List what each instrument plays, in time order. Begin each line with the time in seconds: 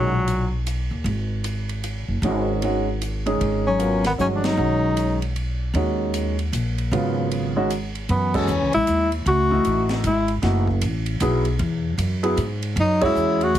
Already playing: upright bass B1, bass clarinet A#2, grand piano D#3 G#3 C#4 F#4, tenor saxophone F#3
0.28 hi-hat pedal, ride
0.67 hi-hat pedal, ride
0.91 upright bass D#2
1.04 upright bass G#1, ride
1.44 hi-hat pedal, ride
1.69 ride
1.84 hi-hat pedal, ride
2.08 upright bass F#1
2.22 upright bass G#1, grand piano D#3 G#3 C#4 F#4, ride
2.62 grand piano D#3 G#3 C#4 F#4, ride
3.02 hi-hat pedal, ride
3.26 grand piano D#3 G#3 C#4 G#4, ride
3.41 upright bass G#1, ride
3.67 bass clarinet F#3, tenor saxophone C#4
3.79 grand piano F#3 B3 F4 A#4, hi-hat pedal, ride
4.04 bass clarinet D#3, tenor saxophone B3, snare, ride
4.18 upright bass G1, grand piano D#3 G#3 C#4 F#4, bass clarinet F#3, tenor saxophone C#4, hi-hat pedal
4.34 bass clarinet F3, tenor saxophone D4
4.44 bass clarinet F#3, tenor saxophone D#4, snare, ride
4.57 upright bass B1, grand piano D#3 G#3 C#4 F#4
4.97 hi-hat pedal, ride
5.22 ride
5.36 ride
5.74 upright bass D#2, grand piano D#3 G#3 C#4 F#4, ride
6.14 hi-hat pedal, ride
6.39 ride
6.52 upright bass A#1, hi-hat pedal, ride
6.78 ride
6.91 upright bass G#1, grand piano C#3 F#3 B3 F4, ride
7.31 ride
7.56 grand piano D#3 G#3 C#4 F#4
7.70 hi-hat pedal, ride
7.95 ride
8.09 upright bass F#2, bass clarinet E3, tenor saxophone B3, ride
8.34 bass clarinet E3, grand piano G#3 C#4 F#4 A4, tenor saxophone C#4, kick, crash
8.47 upright bass E2, hi-hat pedal
8.61 upright bass C#2
8.73 upright bass A1, bass clarinet G#3, tenor saxophone E4, ride
8.87 upright bass D#2, hi-hat pedal, ride
9.12 ride
9.26 upright bass C#2, bass clarinet A3, tenor saxophone F#4, ride
9.50 grand piano E3 A3 D#4 F#4, kick
9.65 upright bass A1, hi-hat pedal, ride
9.89 snare, ride
10.04 upright bass G#1, bass clarinet G#3, tenor saxophone E4, hi-hat pedal, ride
10.28 ride
10.42 upright bass F#1, grand piano E3 A3 D#4 F#4, snare, ride
10.67 kick
10.81 upright bass A1, hi-hat pedal, ride
11.06 ride
11.20 upright bass B1, grand piano F#3 B3 E4 G#4, hi-hat pedal, ride
11.45 ride
11.59 upright bass E2, ride
11.98 upright bass F#2, hi-hat pedal, ride
12.23 grand piano F#3 B3 E4 G#4, ride
12.37 upright bass G#2, hi-hat pedal, ride
12.62 ride
12.76 upright bass F#2, bass clarinet F#3, ride
12.80 tenor saxophone D#4
13.01 bass clarinet G#3, grand piano C#4 F#4 G#4 C#5, tenor saxophone E4, kick, crash
13.15 upright bass E2, hi-hat pedal
13.41 bass clarinet A3, tenor saxophone F#4, ride
13.54 upright bass C#2, hi-hat pedal, ride